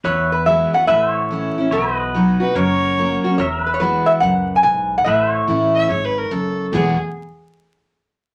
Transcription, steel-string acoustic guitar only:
0.05 E2
0.46 E3 G#3 B3 F#4
0.73 B3 F#4
0.89 A2
1.31 E3 A3 C#4 E4
1.58 C#4 E4
1.72 B2
2.14 F#3 B3 D#4 F#4
2.40 D#4 F#4
2.56 F#2
2.97 F#3 A#3 C#4 F#4
3.24 C#4 F#4
3.40 E2
3.80 E3 G#3 B3 F#4
4.23 F#2
4.64 G#2
5.06 A2
5.47 E3 A3 C#4 E4
5.90 G#2
6.31 F#2
6.73 E2 B2 E3 G#3 B3 F#4

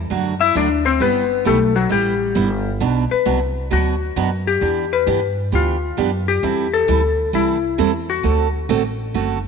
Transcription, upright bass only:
0.11 F#2
0.55 D2
1.00 G1
1.46 B1
1.91 A1
2.36 G1
2.81 B1
3.26 C2
3.72 D2
4.16 F#2
4.62 E2
5.07 G2
5.52 D2
5.98 F#2
6.43 E2
6.88 D2
7.33 C2
7.79 E2
8.24 D2
8.69 A1
9.14 F#1

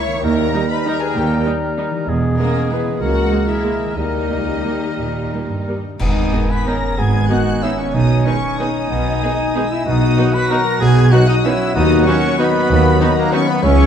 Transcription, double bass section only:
0.25 D#2
1.16 D#2
2.09 E1
3.01 C#2
3.97 D#2
5.00 D#2
6.00 G#1
6.98 G#1
7.94 B1
8.91 B1
9.86 B1
10.81 B1
11.76 D#2
12.70 D#2
13.63 C#2

